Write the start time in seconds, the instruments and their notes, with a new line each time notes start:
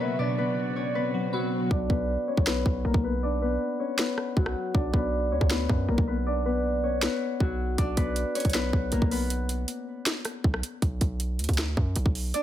Already playing: synth keys B2 F#3 B3, string section C#3 D3 B3 F#4, harp C#4 F#4 C#5, swell
0.00 harp B3 B4, soft synth lead E5
0.19 synth keys B2, harp D4 D5, soft synth lead D5
0.38 harp B3 B4
0.76 harp C#4 C#5
0.95 harp B3 B4
1.14 synth keys F#3
1.33 harp F#3 F#4, synth keys B3
1.71 808-style bass B1, harp D4 D5, kick
1.90 808-style bass B1, harp B3 B4, kick
2.28 harp C#4 C#5
2.37 808-style bass B1, kick
2.47 harp B3 B4, finger snap, snare
2.66 808-style bass B1, kick
2.85 808-style bass B1, harp A#3 A#4
2.94 808-style bass B1, kick
3.04 harp B3 B4
3.23 harp D4 D5
3.42 harp B3 B4
3.80 harp C#4 C#5
3.99 harp B3 B4, finger snap, snare
4.18 cross-stick
4.37 808-style bass B1, harp F#3 F#4, kick
4.46 cross-stick
4.75 808-style bass B1, harp D4 D5, kick
4.94 808-style bass B1, harp B3 B4, kick
5.32 808-style bass D2, harp C#4 C#5
5.41 808-style bass D2, kick
5.50 harp B3 B4, finger snap, snare
5.69 808-style bass F#2, kick
5.89 808-style bass B1, harp A#3 A#4
5.98 808-style bass B1, kick
6.08 harp B3 B4
6.26 harp D4 D5
6.45 harp B3 B4
6.84 harp C#4 C#5
7.02 harp B3 B4, finger snap, snare
7.40 808-style bass B1, harp F#3 F#4, kick
7.78 808-style bass B1, harp D4 D5, kick, closed hi-hat
7.97 808-style bass B1, harp B3 B4, kick, closed hi-hat
8.16 closed hi-hat
8.35 harp C#4 C#5, closed hi-hat
8.40 closed hi-hat
8.45 808-style bass B1, kick, closed hi-hat
8.50 closed hi-hat
8.54 harp B3 B4, finger snap, snare, closed hi-hat
8.73 808-style bass B1, kick
8.92 808-style bass B1, harp A#3 A#4, closed hi-hat
9.02 808-style bass B1, kick
9.11 harp B3 B4, open hi-hat
9.30 closed hi-hat
9.49 closed hi-hat
9.68 closed hi-hat
10.06 finger snap, snare, closed hi-hat
10.25 cross-stick, closed hi-hat
10.44 808-style bass B1, kick
10.54 cross-stick
10.63 closed hi-hat
10.82 808-style bass B1, kick, closed hi-hat
11.01 808-style bass B1, kick, closed hi-hat
11.20 closed hi-hat
11.39 808-style bass D2, closed hi-hat
11.44 closed hi-hat
11.49 808-style bass D2, kick, closed hi-hat
11.53 closed hi-hat
11.58 finger snap, snare, closed hi-hat
11.77 808-style bass F#2, kick
11.96 808-style bass B1, closed hi-hat
12.06 808-style bass B1, kick
12.15 open hi-hat
12.34 harp D4 D5, closed hi-hat